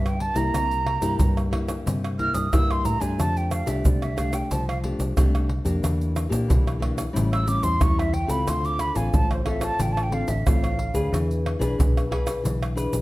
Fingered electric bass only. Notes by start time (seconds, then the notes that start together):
Already playing: G2
0.36 C2
0.54 C2
1.02 G2
1.21 G2
1.86 G2
2.35 G2
2.53 G2
2.85 A2
3.01 G2
3.19 F2
3.67 C2
3.86 C2
4.51 C2
4.99 C2
5.17 C2
5.65 F2
5.83 E2
6.31 A#2
6.50 B1
7.16 A1
7.63 E2
7.82 E2
8.29 C#2
8.48 D2
8.96 A1
9.14 A1
9.80 A1
10.28 A1
10.47 A1
10.94 D2
11.13 E2
11.60 B1
11.79 B1
12.45 B1
12.93 B1